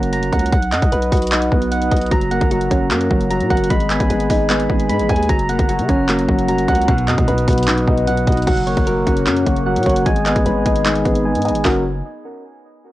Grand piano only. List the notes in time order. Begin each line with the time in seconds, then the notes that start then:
2.11 F#3
2.31 A#3
2.51 F#3
2.71 C#4
2.91 F#3
3.11 F#4
3.31 F#3
3.50 F#5
3.70 G#3
3.90 B3
4.10 G#3
4.30 D#4
4.50 G#3
4.70 G#4
4.89 G#3
5.09 G#5
5.29 F#3
5.49 A#3
5.69 F#3
5.89 C#4
6.09 F#3
6.29 F#4
6.48 F#3
6.68 F#5
6.88 B2
7.08 F#3
7.28 B2
7.48 B3
7.68 B2
7.87 D#4
8.07 B2
8.27 F#4
8.47 F#3
8.67 A#3
8.87 F#3
9.07 C#4
9.27 F#3
9.46 F#4
9.66 F#3
9.86 F#5
10.06 G#3
10.26 B3
10.46 G#3
10.66 D#4
10.85 G#3
11.05 G#4
11.25 G#3
11.45 G#5
11.65 F#3 A#3 C#4 F#4